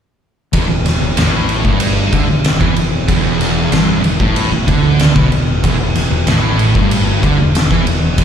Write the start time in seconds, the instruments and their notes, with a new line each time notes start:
0.53 fingered electric bass E1, distorted electric guitar E2, kick, ride
0.69 fingered electric bass E1, distorted electric guitar E2
0.85 fingered electric bass E1, distorted electric guitar E2, snare, ride
1.01 fingered electric bass E1, distorted electric guitar E2
1.16 fingered electric bass A1, distorted electric guitar A2, snare, ride
1.49 ride
1.65 fingered electric bass G1, distorted electric guitar G2, kick
1.80 ride
2.13 fingered electric bass D2, distorted electric guitar D3, kick, ride
2.27 fingered electric bass E1, distorted electric guitar E2
2.44 snare, ride
2.61 fingered electric bass E2, distorted electric guitar E3, kick
2.75 fingered electric bass E1, distorted electric guitar E2, ride
3.08 fingered electric bass E1, distorted electric guitar E2, kick, ride
3.41 snare, ride
3.72 fingered electric bass G1, distorted electric guitar G2, snare, ride
4.03 fingered electric bass E1, distorted electric guitar E2, ride
4.20 fingered electric bass A1, distorted electric guitar A2, kick
4.36 ride
4.51 fingered electric bass E1, distorted electric guitar E2
4.67 fingered electric bass D2, distorted electric guitar D3, kick, ride
4.99 snare, ride
5.15 fingered electric bass B1, distorted electric guitar B2, kick
5.31 fingered electric bass E1, distorted electric guitar E2, ride
5.64 fingered electric bass E1, distorted electric guitar E2, kick, ride
5.79 fingered electric bass E1, distorted electric guitar E2
5.95 fingered electric bass E1, distorted electric guitar E2, snare, ride
6.11 fingered electric bass E1, distorted electric guitar E2
6.27 fingered electric bass A1, distorted electric guitar A2, snare, ride
6.59 ride
6.75 fingered electric bass G1, distorted electric guitar G2, kick
6.91 ride
7.23 fingered electric bass D2, distorted electric guitar D3, kick, ride
7.38 fingered electric bass E1, distorted electric guitar E2
7.55 snare, ride
7.70 fingered electric bass E2, distorted electric guitar E3, kick
7.86 fingered electric bass E1, distorted electric guitar E2, ride
8.18 fingered electric bass E1, distorted electric guitar E2, kick, ride